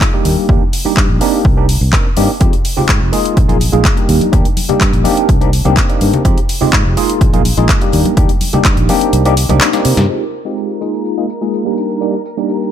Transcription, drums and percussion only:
0.01 kick, clap
0.25 open hi-hat
0.49 kick
0.73 open hi-hat
0.97 kick, clap
1.21 open hi-hat
1.45 kick
1.69 open hi-hat
1.93 kick, clap
2.17 open hi-hat
2.41 kick, closed hi-hat
2.53 closed hi-hat, maracas
2.65 open hi-hat, maracas
2.77 low conga, maracas
2.89 kick, clap, closed hi-hat
3.02 maracas
3.13 open hi-hat, maracas
3.26 closed hi-hat, maracas
3.37 kick, closed hi-hat, low conga, maracas
3.49 closed hi-hat, high conga
3.60 open hi-hat, maracas
3.73 closed hi-hat, maracas
3.85 kick, clap, closed hi-hat
3.97 closed hi-hat, maracas
4.09 open hi-hat, maracas
4.21 closed hi-hat, high conga, maracas
4.33 kick, closed hi-hat
4.45 closed hi-hat, maracas
4.57 open hi-hat, high conga, maracas
4.69 closed hi-hat, low conga, maracas
4.81 kick, clap, closed hi-hat
4.93 closed hi-hat, maracas
5.05 open hi-hat, high conga, maracas
5.17 closed hi-hat, maracas
5.28 kick, closed hi-hat, maracas
5.41 closed hi-hat
5.53 open hi-hat, maracas
5.65 closed hi-hat, high conga, maracas
5.77 kick, clap, closed hi-hat, maracas
5.90 closed hi-hat, maracas
6.01 open hi-hat, maracas
6.14 closed hi-hat, low conga, maracas
6.25 kick, closed hi-hat
6.38 closed hi-hat, maracas
6.49 open hi-hat, maracas
6.62 low conga, maracas
6.73 kick, clap, closed hi-hat
6.86 maracas
6.97 open hi-hat, maracas
7.09 closed hi-hat, maracas
7.21 kick, closed hi-hat, low conga, maracas
7.34 closed hi-hat, high conga
7.45 open hi-hat, maracas
7.58 closed hi-hat, maracas
7.69 kick, clap, closed hi-hat
7.81 closed hi-hat, maracas
7.93 open hi-hat, maracas
8.05 closed hi-hat, high conga, maracas
8.17 kick, closed hi-hat, maracas
8.29 closed hi-hat, maracas
8.41 open hi-hat, high conga, maracas
8.53 closed hi-hat, low conga, maracas
8.65 kick, clap, closed hi-hat
8.77 closed hi-hat, maracas
8.89 open hi-hat, high conga, maracas
9.01 closed hi-hat, maracas
9.13 closed hi-hat, maracas
9.25 closed hi-hat
9.37 open hi-hat, maracas
9.49 closed hi-hat, high conga, low conga, maracas
9.61 snare, clap, closed hi-hat, maracas
9.73 snare, closed hi-hat, maracas
9.85 open hi-hat, maracas
9.97 snare, closed hi-hat, low conga, maracas
10.33 tambourine
10.46 tambourine
10.58 tambourine
10.70 tambourine
10.82 tambourine
10.94 tambourine
11.06 tambourine
11.18 tambourine
11.30 tambourine
11.42 tambourine
11.54 tambourine
11.66 tambourine
11.78 tambourine
11.90 tambourine
12.02 tambourine
12.14 tambourine
12.26 tambourine
12.38 tambourine
12.49 tambourine
12.62 tambourine

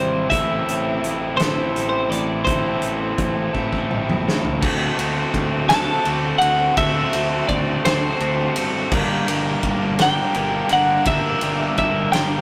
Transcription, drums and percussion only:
0.31 kick, closed hi-hat
0.69 closed hi-hat
1.04 closed hi-hat
1.40 snare, closed hi-hat
1.76 closed hi-hat
2.12 closed hi-hat
2.47 kick, closed hi-hat
2.82 closed hi-hat
3.18 kick, closed hi-hat
3.55 kick
3.73 kick
3.91 mid tom
4.09 mid tom
4.28 snare
4.45 floor tom
4.63 kick, crash
4.99 ride
5.34 kick, ride
5.70 snare, ride
6.05 ride
6.41 ride
6.77 kick, ride
7.13 ride
7.49 kick, ride
7.85 snare, ride
8.20 ride
8.56 ride
8.92 kick, crash
9.28 ride
9.63 kick, ride
9.99 snare, ride
10.34 ride
10.69 ride
11.05 kick, ride
11.41 ride
11.77 kick, ride
12.13 snare, ride

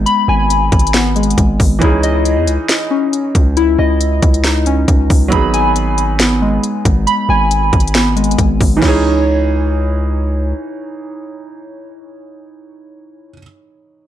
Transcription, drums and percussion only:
0.06 closed hi-hat
0.50 closed hi-hat
0.72 kick, closed hi-hat
0.79 closed hi-hat
0.87 closed hi-hat
0.94 snare, closed hi-hat
1.16 closed hi-hat
1.23 closed hi-hat
1.30 closed hi-hat
1.38 kick, closed hi-hat
1.60 kick, open hi-hat
1.82 kick, closed hi-hat
2.03 closed hi-hat
2.25 closed hi-hat
2.47 closed hi-hat
2.69 snare, closed hi-hat
3.13 closed hi-hat
3.35 kick, closed hi-hat
3.57 closed hi-hat
4.01 closed hi-hat
4.22 kick, closed hi-hat
4.34 closed hi-hat
4.44 snare, closed hi-hat
4.66 closed hi-hat
4.88 kick, closed hi-hat
5.10 kick, open hi-hat
5.32 kick, closed hi-hat
5.54 closed hi-hat
5.76 closed hi-hat
5.98 closed hi-hat
6.20 snare, closed hi-hat
6.64 closed hi-hat
6.85 kick, closed hi-hat
7.07 closed hi-hat
7.51 closed hi-hat
7.73 kick, closed hi-hat
7.80 closed hi-hat
7.88 closed hi-hat
7.95 snare, closed hi-hat
8.17 closed hi-hat
8.24 closed hi-hat
8.31 closed hi-hat
8.38 kick, closed hi-hat
8.61 kick, open hi-hat
8.82 kick, snare, crash

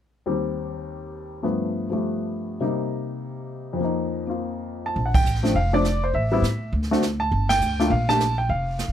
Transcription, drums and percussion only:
4.96 brush sweep, kick
5.14 kick, ride
5.26 hi-hat pedal
5.35 snare
5.44 snare
5.55 brush sweep, kick
5.85 snare, hi-hat pedal
6.14 brush sweep, kick
6.43 snare, hi-hat pedal
6.73 brush sweep, kick
6.83 snare
6.93 snare
7.02 snare, hi-hat pedal
7.32 brush sweep, kick
7.50 snare, ride
7.61 hi-hat pedal
7.80 snare
7.91 brush sweep, kick
8.09 snare
8.20 snare, hi-hat pedal
8.49 brush sweep, kick
8.79 snare, hi-hat pedal

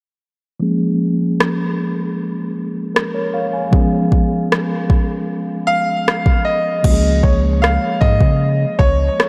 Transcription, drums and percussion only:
1.40 cross-stick
2.96 cross-stick
3.73 kick
4.12 kick
4.52 cross-stick
4.90 kick
6.08 cross-stick
6.26 kick
6.84 kick, crash
7.24 kick
7.64 cross-stick
8.02 kick
8.21 kick
8.79 kick
9.20 cross-stick

